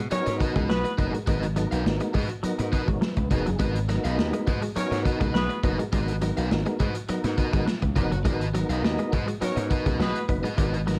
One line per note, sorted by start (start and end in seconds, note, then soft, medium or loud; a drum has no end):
0.11 0.21 F#3 medium
0.11 0.70 B3 medium
0.11 0.35 C#4 loud
0.11 0.70 D#4 medium
0.11 0.35 F#4 loud
0.11 0.70 F#4 medium
0.11 0.35 A#4 loud
0.11 0.70 A#4 loud
0.11 0.35 C#5 loud
0.11 muted overdriven electric guitar stroke medium
0.11 muted slap bass stroke soft
0.11 closed hi-hat loud
0.26 0.39 G#2 loud
0.26 muted overdriven electric guitar stroke soft
0.26 closed hi-hat medium
0.40 0.53 F#4 medium
0.40 0.53 B4 medium
0.40 0.54 D#5 medium
0.40 muted clean electric guitar stroke soft
0.40 kick medium
0.40 closed hi-hat medium
0.56 0.70 C#2 loud
0.56 0.64 G#3 medium
0.56 0.68 F#4 medium
0.56 0.67 B4 medium
0.56 0.67 D#5 medium
0.56 kick loud
0.56 closed hi-hat soft
0.69 0.83 B1 loud
0.69 0.79 F#3 medium
0.69 0.92 B3 loud
0.69 0.92 F#4 loud
0.69 0.93 G#4 loud
0.69 0.92 B4 loud
0.69 snare loud
0.84 muted overdriven electric guitar stroke medium
0.84 closed hi-hat soft
0.98 1.12 F#1 medium
0.98 1.18 B3 loud
0.98 1.19 D#4 medium
0.98 1.14 F#4 medium
0.98 1.19 F#4 medium
0.98 1.19 A#4 loud
0.98 1.13 B4 medium
0.98 1.12 D#5 medium
0.98 muted clean electric guitar stroke soft
0.98 kick loud
0.98 closed hi-hat medium
1.13 1.21 G#3 medium
1.13 muted overdriven electric guitar stroke medium
1.13 closed hi-hat medium
1.26 1.65 G#1 loud
1.26 1.36 G#3 medium
1.26 1.48 B3 medium
1.26 1.48 D#4 medium
1.26 1.43 F#4 medium
1.26 1.48 F#4 medium
1.26 1.48 A#4 loud
1.26 1.44 B4 medium
1.26 1.44 D#5 medium
1.26 kick loud
1.26 closed hi-hat loud
1.43 muted clean electric guitar stroke soft
1.43 closed hi-hat medium
1.56 1.65 F#3 medium
1.56 2.16 B3 medium
1.56 2.16 D#4 medium
1.56 2.16 F#4 medium
1.56 1.64 A4 medium
1.56 muted overdriven electric guitar stroke soft
1.56 closed hi-hat medium
1.64 2.19 A#4 loud
1.71 1.84 B1 medium
1.71 1.84 F#4 medium
1.71 1.83 B4 medium
1.71 1.83 F5 medium
1.71 closed hi-hat soft
1.85 1.99 G#1 medium
1.85 muted overdriven electric guitar stroke soft
1.85 muted clean electric guitar stroke soft
1.85 snare loud
2.00 2.09 G#3 medium
2.00 muted overdriven electric guitar stroke medium
2.00 closed hi-hat medium
2.14 2.28 G#2 medium
2.14 2.23 G#3 medium
2.14 2.30 F#4 medium
2.14 2.29 B4 medium
2.14 2.28 D#5 medium
2.14 kick medium
2.14 open hi-hat medium
2.29 muted overdriven electric guitar stroke soft
2.29 closed hi-hat medium
2.43 2.52 F#3 medium
2.43 3.02 B3 medium
2.43 3.03 D#4 medium
2.43 3.03 F#4 medium
2.43 3.03 A#4 loud
2.43 muted slap bass stroke soft
2.43 closed hi-hat medium
2.59 2.71 G#2 loud
2.59 muted clean electric guitar stroke soft
2.59 muted overdriven electric guitar stroke soft
2.59 closed hi-hat medium
2.72 2.89 F#4 medium
2.72 2.88 B4 medium
2.72 2.87 D#5 medium
2.72 kick medium
2.72 closed hi-hat medium
2.88 3.00 G#1 medium
2.88 2.96 G#3 medium
2.88 3.01 C#5 medium
2.88 muted overdriven electric guitar stroke soft
2.88 kick medium
2.88 closed hi-hat soft
3.01 3.10 F#3 medium
3.01 3.29 B4 medium
3.01 snare loud
3.16 3.29 C#2 medium
3.16 muted clean electric guitar stroke soft
3.16 muted overdriven electric guitar stroke soft
3.16 kick medium
3.16 closed hi-hat soft
3.30 3.44 F1 medium
3.30 3.51 B3 loud
3.30 3.51 D#4 medium
3.30 3.47 F#4 medium
3.30 3.51 F#4 medium
3.30 3.58 G#4 medium
3.30 3.51 A#4 loud
3.30 3.46 B4 medium
3.30 3.45 D#5 medium
3.30 kick medium
3.30 closed hi-hat medium
3.46 3.58 F#1 medium
3.46 3.54 F#3 medium
3.46 muted overdriven electric guitar stroke medium
3.46 closed hi-hat medium
3.59 3.98 G#1 loud
3.59 3.68 G#3 medium
3.59 3.80 B3 medium
3.59 3.80 D#4 medium
3.59 3.76 F#4 medium
3.59 3.80 F#4 medium
3.59 3.80 A#4 medium
3.59 3.76 B4 medium
3.59 3.77 D#5 medium
3.59 kick loud
3.59 closed hi-hat medium
3.75 muted clean electric guitar stroke soft
3.75 closed hi-hat medium
3.88 3.98 F#3 medium
3.88 3.96 A#3 medium
3.88 4.48 D#4 medium
3.88 4.48 F#4 medium
3.88 4.48 A#4 loud
3.88 muted overdriven electric guitar stroke soft
3.88 snare soft
3.88 closed hi-hat medium
3.95 4.51 B3 medium
4.04 4.16 B1 medium
4.04 4.45 D#4 medium
4.04 4.16 F#4 medium
4.04 4.45 G#4 medium
4.04 4.44 B4 medium
4.04 4.16 B4 medium
4.04 4.45 D#5 medium
4.04 4.16 F5 medium
4.04 closed hi-hat medium
4.18 4.31 D#2 medium
4.18 muted overdriven electric guitar stroke soft
4.18 snare loud
4.33 4.41 G#3 medium
4.33 muted overdriven electric guitar stroke medium
4.33 closed hi-hat soft
4.47 4.61 G#2 loud
4.47 4.63 F#4 medium
4.47 4.62 B4 medium
4.47 4.61 D#5 medium
4.47 muted clean electric guitar stroke soft
4.47 kick loud
4.47 closed hi-hat medium
4.62 4.70 G#3 medium
4.62 muted overdriven electric guitar stroke soft
4.62 closed hi-hat medium
4.76 4.85 F#3 medium
4.76 5.35 B3 loud
4.76 5.00 C#4 loud
4.76 5.35 D#4 medium
4.76 4.99 F#4 loud
4.76 5.35 F#4 medium
4.76 4.83 A4 medium
4.76 4.99 A#4 loud
4.76 5.00 C#5 loud
4.76 muted overdriven electric guitar stroke soft
4.76 muted slap bass stroke soft
4.76 closed hi-hat medium
4.83 5.39 A#4 loud
4.91 5.03 G#2 medium
4.91 muted overdriven electric guitar stroke soft
4.91 snare soft
4.91 closed hi-hat medium
5.05 5.18 F#4 medium
5.05 5.18 B4 medium
5.05 5.19 D#5 medium
5.05 muted clean electric guitar stroke soft
5.05 kick medium
5.05 closed hi-hat medium
5.20 5.33 C#2 loud
5.20 5.28 G#3 medium
5.20 5.33 F#4 soft
5.20 5.32 B4 medium
5.20 5.32 D#5 medium
5.20 kick loud
5.20 closed hi-hat soft
5.34 5.48 B1 loud
5.34 5.43 F#3 medium
5.34 5.58 B3 loud
5.34 5.58 F#4 loud
5.34 5.58 G#4 loud
5.34 5.58 B4 loud
5.34 snare loud
5.49 muted overdriven electric guitar stroke soft
5.49 closed hi-hat soft
5.63 5.77 F#1 medium
5.63 5.84 B3 medium
5.63 5.84 D#4 medium
5.63 5.80 F#4 medium
5.63 5.84 F#4 medium
5.63 5.84 A#4 loud
5.63 5.79 B4 medium
5.63 5.78 D#5 medium
5.63 muted clean electric guitar stroke soft
5.63 kick loud
5.63 closed hi-hat medium
5.79 5.87 G#3 medium
5.79 muted overdriven electric guitar stroke soft
5.79 closed hi-hat soft
5.92 6.30 G#1 loud
5.92 6.02 G#3 medium
5.92 6.13 B3 medium
5.92 6.13 D#4 medium
5.92 6.13 F#4 medium
5.92 6.13 A#4 loud
5.92 6.14 B4 loud
5.92 6.14 D#5 medium
5.92 kick loud
5.92 closed hi-hat medium
6.08 muted clean electric guitar stroke soft
6.08 closed hi-hat medium
6.21 6.31 F#3 medium
6.21 6.80 B3 medium
6.21 6.80 D#4 medium
6.21 6.81 F#4 medium
6.21 6.81 A#4 loud
6.21 muted overdriven electric guitar stroke medium
6.21 closed hi-hat medium
6.37 6.49 B1 loud
6.37 6.49 F#4 medium
6.37 6.49 B4 medium
6.37 6.48 F5 medium
6.37 closed hi-hat medium
6.51 6.64 G#1 medium
6.51 muted overdriven electric guitar stroke soft
6.51 muted clean electric guitar stroke soft
6.51 snare loud
6.66 6.74 G#3 medium
6.66 muted overdriven electric guitar stroke medium
6.66 closed hi-hat medium
6.80 6.93 G#2 loud
6.80 6.89 G#3 medium
6.80 6.96 F#4 medium
6.80 6.95 B4 loud
6.80 6.94 D#5 medium
6.80 kick medium
6.80 closed hi-hat medium
6.95 muted overdriven electric guitar stroke soft
6.95 closed hi-hat medium
7.09 7.18 F#3 medium
7.09 7.68 B3 loud
7.09 7.68 D#4 medium
7.09 7.68 F#4 medium
7.09 7.68 A#4 loud
7.09 muted overdriven electric guitar stroke soft
7.09 muted slap bass stroke soft
7.09 closed hi-hat medium
7.24 7.36 G#2 loud
7.24 muted overdriven electric guitar stroke soft
7.24 muted clean electric guitar stroke soft
7.24 snare soft
7.24 closed hi-hat medium
7.38 7.51 F#4 medium
7.38 7.51 B4 medium
7.38 7.51 D#5 medium
7.38 kick medium
7.38 closed hi-hat medium
7.53 7.65 G#1 loud
7.53 7.61 G#3 medium
7.53 7.65 F#4 soft
7.53 7.65 B4 medium
7.53 7.64 D#5 medium
7.53 kick loud
7.53 closed hi-hat medium
7.67 7.76 F#3 medium
7.67 snare loud
7.82 7.94 C#2 medium
7.82 muted overdriven electric guitar stroke medium
7.82 muted clean electric guitar stroke soft
7.82 kick loud
7.82 closed hi-hat soft
7.95 8.09 F1 medium
7.95 8.16 B3 loud
7.95 8.16 D#4 medium
7.95 8.16 F#4 medium
7.95 8.17 A#4 loud
7.95 8.12 B4 medium
7.95 8.10 D#5 medium
7.95 kick loud
7.95 closed hi-hat medium
8.11 8.23 F#1 medium
8.11 8.20 F#3 medium
8.11 muted overdriven electric guitar stroke soft
8.11 closed hi-hat soft
8.25 8.63 G#1 loud
8.25 8.34 G#3 medium
8.25 8.45 B3 medium
8.25 8.45 D#4 medium
8.25 8.46 F#4 medium
8.25 8.46 A#4 loud
8.25 8.46 B4 medium
8.25 8.46 D#5 loud
8.25 kick loud
8.25 closed hi-hat loud
8.41 muted clean electric guitar stroke soft
8.41 closed hi-hat medium
8.54 8.63 F#3 medium
8.54 9.13 B3 loud
8.54 9.13 D#4 medium
8.54 9.13 F#4 medium
8.54 9.13 A#4 loud
8.54 muted overdriven electric guitar stroke medium
8.54 closed hi-hat medium
8.69 8.81 B1 medium
8.69 9.10 D#4 medium
8.69 8.82 F#4 medium
8.69 9.10 G#4 medium
8.69 9.10 B4 medium
8.69 8.81 B4 medium
8.69 9.10 D#5 loud
8.69 8.81 F5 medium
8.69 closed hi-hat soft
8.83 8.96 D#2 loud
8.83 muted overdriven electric guitar stroke soft
8.83 snare loud
8.99 9.07 G#3 medium
8.99 muted overdriven electric guitar stroke soft
8.99 closed hi-hat medium
9.13 9.26 G#2 loud
9.13 9.29 F#4 medium
9.13 9.28 B4 medium
9.13 9.26 D#5 medium
9.13 muted clean electric guitar stroke soft
9.13 kick medium
9.13 closed hi-hat medium
9.28 9.36 G#3 medium
9.28 muted overdriven electric guitar stroke soft
9.28 closed hi-hat medium
9.41 9.50 F#3 medium
9.41 10.00 B3 medium
9.41 9.65 C#4 loud
9.41 10.00 D#4 medium
9.41 9.65 F#4 loud
9.41 10.01 F#4 medium
9.41 9.65 A#4 loud
9.41 10.01 A#4 loud
9.41 9.65 C#5 loud
9.41 muted overdriven electric guitar stroke medium
9.41 muted slap bass stroke soft
9.41 closed hi-hat loud
9.56 9.69 G#2 loud
9.56 muted overdriven electric guitar stroke medium
9.56 closed hi-hat medium
9.70 9.83 F#4 medium
9.70 9.84 B4 medium
9.70 9.84 D#5 medium
9.70 muted clean electric guitar stroke soft
9.70 kick medium
9.70 closed hi-hat medium
9.85 9.98 C#2 medium
9.85 9.94 G#3 medium
9.85 9.98 F#4 soft
9.85 9.98 B4 medium
9.85 9.97 D#5 medium
9.85 kick loud
9.85 closed hi-hat soft
9.99 10.13 B1 medium
9.99 10.09 F#3 medium
9.99 10.23 B3 loud
9.99 10.16 F#4 medium
9.99 10.23 F#4 loud
9.99 10.23 G#4 loud
9.99 10.23 B4 loud
9.99 10.16 B4 medium
9.99 10.17 D#5 medium
9.99 snare loud
10.15 closed hi-hat soft
10.28 10.42 F#1 medium
10.28 10.49 B3 loud
10.28 10.49 D#4 medium
10.28 10.49 F#4 loud
10.28 10.49 B4 loud
10.28 muted overdriven electric guitar stroke medium
10.28 muted clean electric guitar stroke soft
10.28 kick loud
10.28 closed hi-hat medium
10.43 10.52 G#3 medium
10.43 10.55 F#4 soft
10.43 10.56 B4 medium
10.43 10.55 D#5 medium
10.43 closed hi-hat soft
10.57 10.96 G#1 medium
10.57 10.67 G#3 medium
10.57 10.78 B3 medium
10.57 10.78 D#4 medium
10.57 10.78 F#4 medium
10.57 10.78 A#4 medium
10.57 10.78 B4 medium
10.57 10.79 D#5 loud
10.57 kick loud
10.57 closed hi-hat loud
10.73 muted clean electric guitar stroke soft
10.73 closed hi-hat medium
10.86 10.96 F#3 medium
10.86 10.99 B3 medium
10.86 10.99 D#4 medium
10.86 10.99 F#4 medium
10.86 10.99 A#4 loud
10.86 muted overdriven electric guitar stroke soft
10.86 snare soft
10.86 closed hi-hat medium